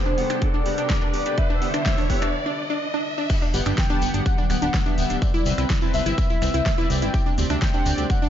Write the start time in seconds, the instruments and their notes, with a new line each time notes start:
Already playing: analog synth pad C3 G3 D4 A4, soft synth lead C5, riser
0.06 synth pluck D4
0.18 analog polysynth B3 G4 F#5, open hi-hat
0.30 analog polysynth B3 G4 G5, synth pluck D4, finger snap, closed hi-hat
0.42 analog polysynth B3 G4 F#5, soft synth lead D5, kick, closed hi-hat
0.54 synth pluck D4
0.66 analog polysynth B3 G4 F#5, open hi-hat
0.78 analog polysynth B3 G4 G5, synth pluck D4, closed hi-hat
0.90 analog polysynth B3 G4 F#5, soft synth lead D5, kick, snare, closed hi-hat
1.02 synth pluck D4
1.14 analog polysynth B3 G4 F#5, open hi-hat
1.26 analog polysynth B3 G4 G5, synth pluck D4, closed hi-hat
1.38 analog synth pad D3 E4 B4, analog polysynth G4 F#5, soft synth lead E5, kick, closed hi-hat
1.50 synth pluck D4
1.62 analog polysynth B3 G4 F#5, open hi-hat
1.74 synth pluck D4, finger snap, closed hi-hat
1.86 analog polysynth B3 G4 F#5, soft synth lead E5, kick, snare, closed hi-hat
1.98 synth pluck D4, open hi-hat
2.10 analog polysynth B3 G4 F#5, kick, open hi-hat
2.22 synth pluck D4, finger snap, closed hi-hat
2.46 synth pluck D4
2.70 synth pluck D4
2.94 synth pluck D4
3.18 synth pluck D4
3.29 analog synth pad D3 F#3 G3 B3, analog polysynth B3 G4 F#5, kick, closed hi-hat, crash, shekere
3.42 synth pluck D4, shekere
3.54 analog synth bass G1, analog polysynth B3 G4 F#5, open hi-hat, shekere
3.66 analog synth bass G1, analog polysynth B3 G4 G5, synth pluck D4, finger snap, closed hi-hat, shekere
3.78 soft synth lead G5, kick, snare, closed hi-hat, shekere
3.90 analog polysynth B3 G4 A5, synth pluck D4, shekere
4.02 analog synth bass G1, analog polysynth B3 G4 F#5, open hi-hat, shekere
4.14 analog synth bass G1, synth pluck D4, closed hi-hat, shekere
4.25 analog polysynth G4, soft synth lead F#5, kick, closed hi-hat, shekere
4.38 synth pluck D4, shekere
4.50 analog synth bass D1, analog polysynth B3 G4 F#5, finger snap, open hi-hat, shekere
4.62 analog synth bass D1, analog polysynth B3 G4 G5, synth pluck D4, closed hi-hat, shekere
4.74 kick, snare, closed hi-hat, shekere
4.86 analog polysynth B3 G4 E5, synth pluck D4, shekere
4.98 analog synth bass D1, analog polysynth B3 G4 E5, open hi-hat, shekere
5.10 analog synth bass D1, synth pluck D4, closed hi-hat, shekere
5.22 analog synth pad C3 E4, analog polysynth C4 B4 E5, soft synth lead D5, kick, closed hi-hat, shekere
5.34 synth pluck E4, shekere
5.45 analog synth bass C2, analog polysynth C4 B4 E5, open hi-hat, shekere
5.58 analog synth bass C2, analog polysynth C4 B4 G5, synth pluck E4, finger snap, closed hi-hat, shekere
5.70 kick, snare, closed hi-hat, shekere
5.82 analog polysynth C4 B4 A5, synth pluck E4, shekere
5.94 analog synth bass C2, analog polysynth C4 B4 E5, soft synth lead E5, open hi-hat, shekere
6.06 analog synth bass G1, synth pluck E4, closed hi-hat, shekere
6.18 analog polysynth C4 E5, kick, closed hi-hat, shekere
6.29 synth pluck E4, shekere
6.42 analog synth bass C2, analog polysynth C4 B4 E5, finger snap, open hi-hat, shekere
6.54 analog synth bass C2, analog polysynth C4 B4 G5, synth pluck E4, closed hi-hat, shekere
6.66 kick, snare, closed hi-hat, shekere
6.78 analog polysynth C4 B4 D5, synth pluck E4, shekere
6.90 analog synth bass C2, analog polysynth C4 B4 D5, soft synth lead G5, open hi-hat, shekere
7.01 analog synth bass G1, synth pluck E4, closed hi-hat, shekere
7.14 analog synth pad G3 A3 D4, analog polysynth C4 G4 D5, kick, closed hi-hat, shekere
7.26 synth pluck D4, shekere
7.38 analog synth bass D2, analog polysynth C4 G4 D5, open hi-hat, shekere
7.50 analog synth bass D2, analog polysynth C4 G4 E5, synth pluck D4, finger snap, closed hi-hat, shekere
7.62 soft synth lead G5, kick, snare, closed hi-hat, shekere
7.74 analog polysynth C4 G4 F#5, synth pluck D4, shekere
7.86 analog synth bass D2, analog polysynth C4 G4 D5, open hi-hat, shekere
7.98 analog synth bass D2, synth pluck D4, closed hi-hat, shekere
8.10 analog polysynth C4 G4 D5, soft synth lead F#5, kick, closed hi-hat, shekere
8.22 synth pluck D4, shekere